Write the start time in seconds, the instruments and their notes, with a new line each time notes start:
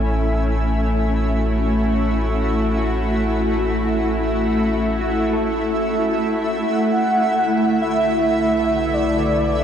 Already playing: analog synth bass A1, ambient pad A3 C#4 E4 E5 G#5, synth drone A3 E4
0.16 ambient pad F#4
2.78 clean electric guitar F#4
5.01 clean electric guitar F#4
5.33 clean electric guitar A4
6.68 analog synth bass B1, soft synth lead F#5
7.12 ambient pad D3
7.81 soft synth lead E5
8.10 ambient pad B4
8.93 soft synth lead D5